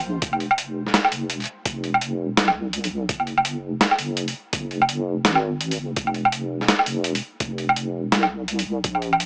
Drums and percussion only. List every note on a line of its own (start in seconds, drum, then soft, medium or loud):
0.22 kick loud
0.22 closed hi-hat medium
0.33 low woodblock soft
0.40 open hi-hat soft
0.51 low woodblock medium
0.58 closed hi-hat medium
0.87 snare soft
0.94 snare loud
0.94 closed hi-hat medium
1.05 low woodblock medium
1.12 open hi-hat medium
1.30 closed hi-hat medium
1.40 open hi-hat soft
1.42 open hi-hat soft
1.44 open hi-hat soft
1.46 open hi-hat medium
1.65 kick loud
1.65 closed hi-hat medium
1.84 open hi-hat soft
1.94 low woodblock medium
2.01 closed hi-hat medium
2.37 snare loud
2.37 closed hi-hat medium
2.48 low woodblock medium
2.73 closed hi-hat medium
2.84 open hi-hat medium
3.09 kick loud
3.09 closed hi-hat medium
3.20 low woodblock soft
3.27 open hi-hat soft
3.38 low woodblock medium
3.45 closed hi-hat medium
3.81 snare loud
3.81 closed hi-hat medium
3.91 low woodblock medium
3.99 open hi-hat medium
4.17 closed hi-hat medium
4.28 open hi-hat medium
4.53 kick loud
4.53 closed hi-hat medium
4.71 open hi-hat soft
4.82 low woodblock medium
4.89 closed hi-hat medium
5.25 snare loud
5.25 closed hi-hat medium
5.35 low woodblock medium
5.61 closed hi-hat medium
5.71 open hi-hat medium
5.96 kick loud
5.96 closed hi-hat medium
6.07 low woodblock soft
6.14 open hi-hat soft
6.25 low woodblock medium
6.32 closed hi-hat medium
6.61 snare soft
6.68 snare loud
6.68 closed hi-hat medium
6.79 low woodblock medium
6.86 open hi-hat medium
7.04 closed hi-hat medium
7.15 open hi-hat medium
7.40 kick loud
7.40 closed hi-hat medium
7.58 open hi-hat soft
7.69 low woodblock medium
7.76 closed hi-hat medium
8.12 snare loud
8.12 closed hi-hat medium
8.23 low woodblock medium
8.48 closed hi-hat medium
8.59 open hi-hat medium
8.84 kick loud
8.84 closed hi-hat medium
8.95 low woodblock soft
9.02 open hi-hat soft
9.13 low woodblock medium
9.20 closed hi-hat medium